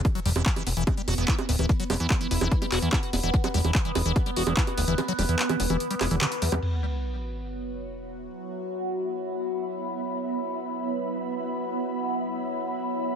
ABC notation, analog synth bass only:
X:1
M:4/4
L:1/16
Q:1/4=146
K:Clyd
V:1 name="Analog synth bass" clef=bass
z2 E,,, E,,, z2 E,,, E,,, z2 E,,, E,,, z2 D,,, D,,, | z2 E,,, E,, z2 E,,, E,,, z2 E,,, E,, z2 E,,, E,,, | z2 E,,, E,,, z2 E,,, E,,, z2 E,,, E,,, z2 D,,, D,,, | z2 E,,, E,, z2 E,,, E,,, z2 E,,, E,,, z2 E,, E,, |
z16 | z16 | z16 | z16 |]